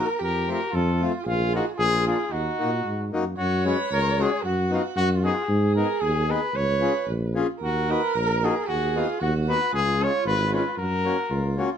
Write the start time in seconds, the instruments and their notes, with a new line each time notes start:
Already playing: erhu A#4
0.00 trumpet A#4
0.19 tuba F2, erhu G4, trumpet A#4
0.48 accordion A3 C4 F4, trumpet A#4
0.71 tuba F2, erhu F4, trumpet A4
1.01 accordion A3 C4 F4
1.24 tuba A#1, trumpet F4, erhu G#4
1.53 accordion A#3 D#4 F4, trumpet F#4
1.77 tuba A#1, erhu F4, trumpet G#4
2.06 accordion A#3 D4 F4, trumpet G#4
2.31 tuba D#2, erhu D#4, trumpet F#4
2.59 tuba A#2, accordion A#3 D#4 F#4
2.85 tuba G#2
3.12 tuba F#2, accordion A#3 D#4 F#4
3.37 tuba F#2, trumpet F#4, erhu C#5
3.65 accordion G#3 C#4 F#4, trumpet B4
3.91 tuba C#2, trumpet A#4
4.18 accordion G#3 C#4 F#4, trumpet G#4
4.44 tuba F#2, trumpet F#4, erhu F#4
4.70 accordion B3 D#4 F#4, trumpet F4
4.96 tuba F#2, trumpet F#4
5.24 accordion B3 D#4 F#4, trumpet G#4
5.48 tuba G#2, erhu G#4
5.76 accordion B3 D#4 G#4, trumpet A#4
6.00 tuba D#2, trumpet G#4
6.28 accordion B3 D#4 G#4, trumpet B4
6.54 tuba C#2, erhu B4, trumpet C#5
6.81 accordion C#4 F4 G#4
7.07 tuba A#1
7.35 accordion C#4 F4 G#4
7.60 tuba D#2, trumpet F#4, erhu A#4
7.89 accordion A#3 D#4 F#4, trumpet B4
8.15 tuba A#1, trumpet A#4
8.43 accordion A#3 D#4 F#4, trumpet G#4
8.67 tuba D#2, trumpet F#4, erhu G#4
8.95 accordion B3 D#4 F#4, trumpet F4
9.20 tuba D#2, erhu F#4, trumpet F#4
9.47 accordion B3 D#4 F#4, trumpet B4
9.73 tuba C#2, erhu F4, trumpet G#4
9.99 accordion G#3 C#4 F4
10.03 trumpet C#5
10.25 tuba G#1, trumpet B4
10.51 accordion G#3 C#4 F4, trumpet B4
10.78 tuba F#2, erhu F#4, trumpet A#4
11.04 accordion A#3 C#4 F#4
11.30 tuba C#2, erhu F4
11.57 accordion A#3 C#4 F#4